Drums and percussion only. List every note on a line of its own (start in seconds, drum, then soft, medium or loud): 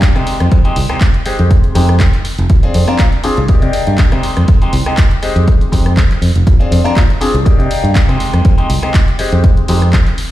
0.02 kick loud
0.02 clap loud
0.02 closed hi-hat medium
0.16 cross-stick medium
0.16 closed hi-hat soft
0.27 open hi-hat loud
0.40 cross-stick medium
0.40 closed hi-hat soft
0.52 kick loud
0.52 closed hi-hat medium
0.65 closed hi-hat soft
0.76 open hi-hat loud
0.90 cross-stick medium
0.90 closed hi-hat soft
1.01 kick loud
1.01 clap loud
1.01 closed hi-hat medium
1.14 closed hi-hat soft
1.26 open hi-hat medium
1.39 closed hi-hat soft
1.51 kick loud
1.51 closed hi-hat medium
1.64 closed hi-hat soft
1.75 open hi-hat loud
1.89 cross-stick medium
1.89 closed hi-hat soft
2.00 kick loud
2.00 clap loud
2.00 closed hi-hat medium
2.13 clap soft
2.13 closed hi-hat soft
2.25 open hi-hat medium
2.38 closed hi-hat soft
2.50 kick loud
2.50 closed hi-hat medium
2.63 closed hi-hat soft
2.74 open hi-hat loud
2.88 cross-stick medium
2.88 closed hi-hat soft
2.99 kick loud
2.99 clap loud
2.99 closed hi-hat medium
3.12 closed hi-hat soft
3.24 open hi-hat medium
3.37 closed hi-hat soft
3.48 kick loud
3.48 closed hi-hat medium
3.62 closed hi-hat soft
3.73 open hi-hat loud
3.87 closed hi-hat soft
3.98 kick loud
3.98 clap loud
3.98 closed hi-hat medium
4.12 cross-stick medium
4.12 closed hi-hat soft
4.23 open hi-hat medium
4.37 cross-stick medium
4.37 closed hi-hat soft
4.48 kick loud
4.48 closed hi-hat medium
4.62 closed hi-hat soft
4.73 open hi-hat loud
4.86 cross-stick medium
4.86 closed hi-hat soft
4.97 kick loud
4.97 clap loud
4.97 closed hi-hat medium
5.11 closed hi-hat soft
5.23 open hi-hat medium
5.36 closed hi-hat soft
5.48 kick loud
5.48 closed hi-hat medium
5.61 closed hi-hat soft
5.72 kick medium
5.72 open hi-hat loud
5.86 cross-stick medium
5.86 closed hi-hat soft
5.97 kick loud
5.97 clap loud
5.97 closed hi-hat medium
6.11 clap soft
6.11 closed hi-hat soft
6.22 open hi-hat medium
6.36 closed hi-hat soft
6.47 kick loud
6.47 closed hi-hat medium
6.61 closed hi-hat soft
6.72 open hi-hat loud
6.86 cross-stick medium
6.86 closed hi-hat soft
6.96 kick loud
6.96 clap loud
6.96 closed hi-hat medium
7.10 closed hi-hat soft
7.21 open hi-hat loud
7.35 closed hi-hat soft
7.46 kick loud
7.46 closed hi-hat medium
7.60 closed hi-hat soft
7.71 open hi-hat loud
7.84 closed hi-hat soft
7.95 kick loud
7.95 clap loud
7.95 closed hi-hat medium
8.09 cross-stick medium
8.09 closed hi-hat soft
8.20 open hi-hat loud
8.34 cross-stick medium
8.34 closed hi-hat soft
8.45 kick loud
8.45 closed hi-hat medium
8.58 closed hi-hat soft
8.70 open hi-hat loud
8.83 cross-stick medium
8.94 kick loud
8.94 clap loud
8.94 closed hi-hat medium
9.08 closed hi-hat soft
9.19 open hi-hat loud
9.32 closed hi-hat soft
9.44 kick loud
9.44 closed hi-hat medium
9.57 closed hi-hat soft
9.68 open hi-hat loud
9.82 cross-stick medium
9.82 closed hi-hat soft
9.93 kick loud
9.93 clap loud
9.93 closed hi-hat medium
10.06 clap soft
10.06 closed hi-hat soft
10.18 open hi-hat loud